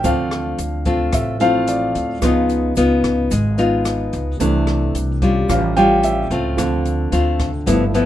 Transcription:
0.04 D2 D3 F3 A3 C4 F4 F5, kick, closed hi-hat, shaker
0.31 cross-stick, closed hi-hat, shaker
0.58 D2, closed hi-hat, shaker
0.85 A3 C4 F4, kick, closed hi-hat, shaker
1.13 A1 A2 E5, kick, cross-stick, closed hi-hat, shaker
1.40 F3 A3 C4 E4 F4 F5, closed hi-hat, shaker
1.67 D5, closed hi-hat, shaker
1.95 D2, closed hi-hat, shaker
2.22 C#2 C#3 F3 B3 D#4 F4, kick, cross-stick, closed hi-hat, shaker
2.49 closed hi-hat, shaker
2.76 C#2 B3 D#4 F4, closed hi-hat, shaker
3.04 kick, cross-stick, closed hi-hat, shaker
3.31 G#1 G#3, kick, closed hi-hat, shaker
3.58 B3 D#4 F4, closed hi-hat, shaker
3.85 cross-stick, closed hi-hat, shaker
4.13 C#2, closed hi-hat, shaker
4.40 C2 C3 E3 A3 D4 E4, kick, closed hi-hat, shaker
4.67 cross-stick, closed hi-hat, shaker
4.95 C2, closed hi-hat, shaker
5.22 G3 C#4 F4, kick, closed hi-hat, shaker
5.49 A1 A2 F3 G3 C#4 F5, kick, cross-stick, closed hi-hat, shaker
5.76 G3 C#4 F4 G5, closed hi-hat, shaker
6.03 E5, closed hi-hat, shaker
6.30 C#2 A3 C4 F4, closed hi-hat, shaker
6.57 D2 D3 F3 C4, kick, cross-stick, closed hi-hat, shaker
6.85 closed hi-hat, shaker
7.12 D2 A3 C4 F4, closed hi-hat, shaker
7.40 kick, cross-stick, closed hi-hat, shaker
7.66 G1 G2 F3 A3 B3 E4, kick, closed hi-hat, shaker
7.94 F3 B3 E4, closed hi-hat, shaker

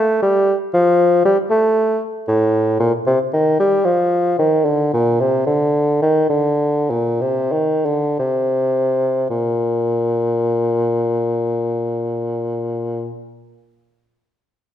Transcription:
Already playing: A3
0.23 G3
0.74 F3
1.25 G3
1.50 A3
2.28 A2
2.80 A#2
3.07 C3
3.34 D#3
3.60 G3
3.85 F3
4.39 D#3
4.65 D3
4.94 A#2
5.20 C3
5.46 D3
6.02 D#3
6.30 D3
6.90 A#2
7.21 C3
7.52 D#3
7.86 D3
8.19 C3
9.30 A#2

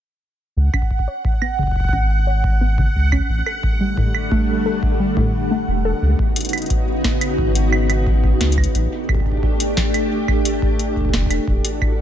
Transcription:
0.56 C#2 F#5
0.74 C#4, kick, claves
0.82 kick
0.91 kick
0.99 kick
1.08 C#5
1.25 kick
1.42 B3, claves
1.59 C#3, kick
1.63 kick
1.67 kick
1.72 kick
1.76 kick
1.80 kick
1.84 kick
1.89 kick
1.93 G#1 C#4, kick
2.27 C#5
2.44 kick
2.61 B3
2.78 C#3, kick
2.95 C#2
3.12 C#4, kick, claves
3.29 A1 D3 G3 A3
3.46 A4, claves
3.63 kick
3.81 G3
3.97 A2, kick
4.15 claves
4.32 A3, kick
4.66 A4
4.83 kick
5.00 G3
5.17 A2, kick
5.51 A3
5.68 E1
5.85 A4
6.02 C#2 C#3 B3 D#4 F#4
6.19 kick
6.36 closed hi-hat
6.41 closed hi-hat
6.45 closed hi-hat
6.49 closed hi-hat
6.53 closed hi-hat, claves
6.58 closed hi-hat
6.62 closed hi-hat
6.66 closed hi-hat
6.70 kick, closed hi-hat
7.04 kick, snare
7.21 closed hi-hat, claves
7.38 G#1, kick
7.55 closed hi-hat
7.73 claves
7.90 closed hi-hat, claves
8.07 kick
8.24 kick
8.41 C#2, snare, closed hi-hat
8.52 closed hi-hat
8.58 kick, claves
8.64 closed hi-hat
8.75 A1 A3 D4 G4, closed hi-hat
9.09 kick, claves
9.15 kick
9.20 kick
9.26 kick
9.32 kick
9.37 kick
9.43 kick
9.60 closed hi-hat
9.77 kick, snare
9.94 closed hi-hat, claves
10.28 kick, claves
10.45 closed hi-hat
10.62 kick
10.79 closed hi-hat
10.96 kick
11.01 kick
11.05 kick
11.09 kick
11.13 E1, kick, snare
11.18 kick
11.22 kick
11.26 kick
11.31 closed hi-hat, claves
11.47 E1 E3 D4 F#4 A4, kick
11.65 closed hi-hat
11.82 kick, claves

